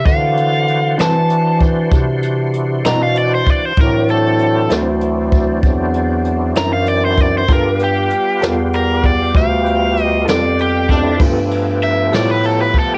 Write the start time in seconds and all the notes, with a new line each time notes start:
0.05 D3 E3 D4 F#4 C5 F5, kick, closed hi-hat
0.37 closed hi-hat
0.68 closed hi-hat
0.98 D3 E3 F#3 C4 E4 A5, snare, closed hi-hat
1.30 closed hi-hat
1.61 kick, closed hi-hat
1.91 C3, kick, closed hi-hat
2.23 closed hi-hat
2.53 closed hi-hat
2.84 B2 D3 F#3 C4 E4 A#5, snare, closed hi-hat
3.03 F5
3.16 D5, closed hi-hat
3.35 C5
3.46 D5, kick, snare, closed hi-hat
3.65 C5
3.77 A2 E3 F#3 C4 D4, kick, closed hi-hat
3.81 A#4
4.08 A4, closed hi-hat
4.39 closed hi-hat
4.70 D2 D3 F#3 C4 E4, snare, closed hi-hat
5.01 closed hi-hat
5.32 kick, closed hi-hat
5.62 E2, kick, closed hi-hat
5.94 closed hi-hat
6.24 closed hi-hat
6.55 F#2 D3 F#3 C4 E4 A#5, snare, closed hi-hat
6.73 F5
6.86 D5, closed hi-hat
7.05 C5
7.17 D5, kick, closed hi-hat
7.38 C5
7.48 G2 G3 B3 F4 G4 A4, kick, closed hi-hat
7.53 A#4
7.79 closed hi-hat
7.84 G4
8.10 closed hi-hat
8.41 E2 G3 B3 F4 A4, snare, closed hi-hat
8.73 A#4, closed hi-hat
9.04 D5, kick, closed hi-hat
9.35 D2 F5, kick, snare, closed hi-hat
9.66 closed hi-hat
9.97 closed hi-hat
10.03 D#5
10.25 F2 G3 B3 F4 A4, snare, closed hi-hat
10.30 D5
10.59 G4, closed hi-hat
10.89 G3 A3 D4, kick, snare, closed hi-hat
10.95 B3 C4
11.01 D4 E4
11.06 F4 G4
11.11 A4 B4
11.17 G2 F3 G3 A3 B3 F4 G4 C5, kick, crash
11.21 A4
11.51 ride
11.82 E5, ride
12.12 A2 G3 B3 F4 A4, snare, ride
12.16 D5
12.31 B4
12.43 A4, ride
12.61 B4
12.74 kick, ride
12.79 A4